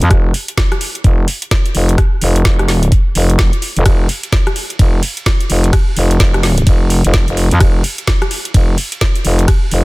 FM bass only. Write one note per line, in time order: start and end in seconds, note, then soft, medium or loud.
0.02 0.09 F2 loud
0.11 0.33 F1 loud
1.04 1.26 F1 medium
1.75 1.97 F1 medium
2.22 2.44 F1 loud
2.45 2.90 F1 medium
3.15 3.51 F1 loud
3.76 3.84 F1 loud
3.86 4.08 F1 loud
4.79 5.01 F1 medium
5.50 5.72 F1 medium
5.96 6.18 F1 medium
6.20 6.65 F1 loud
6.67 7.02 F1 medium
7.05 7.26 F1 medium
7.28 7.49 F1 loud
7.51 7.59 F2 loud
7.61 7.83 F1 loud
8.54 8.76 F1 medium
9.25 9.47 F1 loud
9.71 9.84 F1 loud